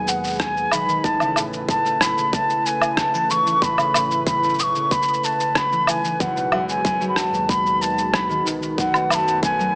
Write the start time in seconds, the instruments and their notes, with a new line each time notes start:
Already playing: sub bass D#2, harp B2 F#3, analog synth pad D#3 G#3 G#4 B4, flute G#5
0.08 flute F#5, shaker
0.24 shaker
0.27 shaker
0.30 shaker
0.32 shaker
0.35 shaker
0.38 flute G#5, kick, cross-stick, shaker
0.41 shaker
0.57 shaker
0.71 sub bass B1, harp D#3, flute B5, low woodblock, shaker
0.88 harp D#3, shaker
1.03 sub bass A1, harp A2, analog synth pad C#3 A3 E4 B4, flute A5, kick, shaker
1.20 harp C#3, low woodblock, shaker
1.36 harp A2, low woodblock, shaker
1.53 shaker
1.69 harp A2, flute A5, kick, shaker
1.85 harp A3, shaker
2.01 sub bass B1, harp A2, flute B5, cross-stick, shaker
2.17 sub bass E1, harp C#3, shaker
2.33 flute A5, kick, shaker
2.50 shaker
2.66 flute G#5, shaker
2.82 low woodblock, shaker
2.97 flute A5, kick, cross-stick, shaker
3.14 harp E3, shaker
3.30 sub bass A1, harp E3, flute C#6, shaker
3.46 harp E3, shaker
3.62 harp A2, flute B5, kick, shaker
3.78 harp C#3, low woodblock, shaker
3.94 harp A2, low woodblock, shaker
4.11 shaker
4.27 harp A2, flute B5, kick, shaker
4.43 harp A3, shaker
4.49 shaker
4.54 shaker
4.59 sub bass B1, harp A2, flute D#6, shaker
4.63 flute C#6
4.75 sub bass E1, harp C#3, shaker
4.91 flute B5, kick, shaker
5.02 shaker
5.08 shaker
5.13 shaker
5.24 flute A5, shaker
5.40 shaker
5.55 flute B5, kick, cross-stick, shaker
5.72 harp E3, shaker
5.87 harp E3, flute G#5, low woodblock, shaker
6.04 harp E3, shaker
6.20 sub bass G#1, harp F#2, analog synth pad D#3 G#3 F#4, flute F#5, kick, shaker
6.36 harp B2, shaker
6.52 harp F#2, low woodblock
6.69 flute G#5, shaker
6.84 harp F#2, kick, shaker
7.01 harp F#3, shaker
7.09 flute B5
7.16 sub bass B1, harp F#2, flute A5, cross-stick, shaker
7.32 sub bass D#2, harp B2, shaker
7.49 flute B5, kick, shaker
7.66 shaker
7.82 flute A5, shaker
7.98 shaker
8.14 flute B5, kick, cross-stick, shaker
8.29 harp D#3, shaker
8.45 sub bass B1, harp D#3, shaker
8.62 harp D#3, shaker
8.78 harp F#2, analog synth pad A3 B4, flute F#5, kick, shaker
8.94 harp B2, low woodblock, shaker
9.10 harp F#2, flute B5, low woodblock, shaker
9.15 flute A5
9.28 shaker
9.43 harp F#2, flute G#5, kick, shaker
9.59 harp F#3, shaker